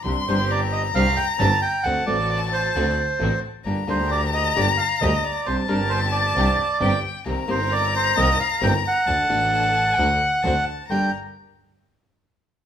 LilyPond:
<<
  \new Staff \with { instrumentName = "Violin" } { \time 4/4 \key g \minor \tempo 4 = 133 c'''4 bes''2. | a''2.~ a''8 r8 | bes''1 | a''2. g''4 |
bes''1 | a''4 a''4 fis''4 a''4 | bes''8 r2. r8 | }
  \new Staff \with { instrumentName = "Bandoneon" } { \time 4/4 \key g \minor r8 c''8 d''8 ees''8 f''8 g''8 a''8 g''8 | fis''8 d''8 d''8 c''2 r8 | r8 c''8 d''8 ees''8 d''8 f''8 ees''8 d''8 | c''8 bes'8 c''8 d''2 r8 |
r8 c''8 d''16. d''32 c''8 ees''8 f''8 g''8 fis''8~ | fis''2.~ fis''8 r8 | g''8 r2. r8 | }
  \new Staff \with { instrumentName = "String section" } { \time 4/4 \key g \minor <c' d' g'>8 <c' d' g'>4. <c' d' g'>8 r8 <c' d' g'>8 r8 | <c' d' fis'>8 <c' d' fis'>4. <c' d' fis'>8 r8 <c' d' fis'>8 r8 | <bes d' g'>8 <bes d' g'>4. <bes d' g'>8 r8 <bes d' g'>8 r8 | <c' d' g'>8 <c' d' g'>4. <c' d' g'>8 r8 <c' d' g'>8 r8 |
<c' ees' bes'>8 <c' ees' bes'>4. <c' ees' bes'>8 r8 <c' ees' bes'>8 r8 | <d' fis' a'>8 <d' fis' a'>4. <d' fis' a'>8 r8 <d' fis' c''>8 r8 | <d' g' bes'>8 r2. r8 | }
  \new Staff \with { instrumentName = "Nylon-string guitar" } { \time 4/4 \key g \minor <c g c' d' g'>8 <c g c' d' g'>8 r4 <c g c' d' g'>8 r8 <c g c' d' g'>8 r8 | <d a c' fis'>8 <d a c' fis'>8 r4 <d a c' fis'>8 r8 <d a c' fis'>8 r8 | <d g bes d' g'>8 <d g bes d' g'>8 r4 <d g bes d' g'>8 r8 <d g bes d' g'>8 r8 | <c g c' d' g'>8 <c g c' d' g'>8 r4 <c g c' d' g'>8 r8 <c g c' d' g'>8 r8 |
<c ees bes c' g'>8 <c ees bes c' g'>8 r4 <c ees bes c' g'>8 r8 <c ees bes c' g'>8 r8 | <d a d' fis'>8 <d a d' fis'>8 r4 <d a d' fis'>8 r8 <d a c' fis'>8 r8 | <g, d g bes d' g'>8 r2. r8 | }
  \new Staff \with { instrumentName = "Double bass" } { \clef bass \time 4/4 \key g \minor c,8 g,,4. c,8 r8 g,,8 r8 | d,8 a,,4. d,8 r8 a,,8 r8 | g,,8 d,4. g,,8 r8 d,8 r8 | c,8 g,,4. c,8 r8 g,,8 r8 |
c,8 g,,4. c,8 r8 g,,8 r8 | d,8 a,,4. d,8 r8 d,8 r8 | g,,8 r2. r8 | }
>>